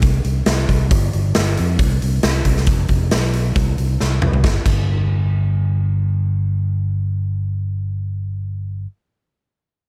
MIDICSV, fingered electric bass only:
0, 0, Header, 1, 2, 480
1, 0, Start_track
1, 0, Tempo, 440852
1, 995, Time_signature, 4, 2, 24, 8
1, 10767, End_track
2, 0, Start_track
2, 0, Title_t, "Fingered electric bass"
2, 0, Program_c, 0, 33
2, 31, Note_on_c, 0, 36, 87
2, 250, Note_off_c, 0, 36, 0
2, 267, Note_on_c, 0, 36, 78
2, 488, Note_off_c, 0, 36, 0
2, 499, Note_on_c, 0, 36, 91
2, 724, Note_off_c, 0, 36, 0
2, 751, Note_on_c, 0, 36, 78
2, 970, Note_off_c, 0, 36, 0
2, 991, Note_on_c, 0, 31, 93
2, 1210, Note_off_c, 0, 31, 0
2, 1243, Note_on_c, 0, 31, 82
2, 1457, Note_off_c, 0, 31, 0
2, 1482, Note_on_c, 0, 31, 86
2, 1697, Note_off_c, 0, 31, 0
2, 1734, Note_on_c, 0, 41, 88
2, 1943, Note_off_c, 0, 41, 0
2, 1953, Note_on_c, 0, 36, 87
2, 2171, Note_off_c, 0, 36, 0
2, 2207, Note_on_c, 0, 36, 77
2, 2419, Note_off_c, 0, 36, 0
2, 2435, Note_on_c, 0, 36, 84
2, 2653, Note_off_c, 0, 36, 0
2, 2669, Note_on_c, 0, 36, 89
2, 2889, Note_off_c, 0, 36, 0
2, 2914, Note_on_c, 0, 29, 86
2, 3132, Note_off_c, 0, 29, 0
2, 3149, Note_on_c, 0, 29, 77
2, 3369, Note_off_c, 0, 29, 0
2, 3409, Note_on_c, 0, 35, 74
2, 3839, Note_off_c, 0, 35, 0
2, 3875, Note_on_c, 0, 36, 90
2, 4093, Note_off_c, 0, 36, 0
2, 4124, Note_on_c, 0, 36, 72
2, 4338, Note_off_c, 0, 36, 0
2, 4369, Note_on_c, 0, 36, 80
2, 4580, Note_off_c, 0, 36, 0
2, 4608, Note_on_c, 0, 36, 82
2, 4820, Note_off_c, 0, 36, 0
2, 4828, Note_on_c, 0, 31, 100
2, 4965, Note_off_c, 0, 31, 0
2, 5073, Note_on_c, 0, 31, 78
2, 9641, Note_off_c, 0, 31, 0
2, 10767, End_track
0, 0, End_of_file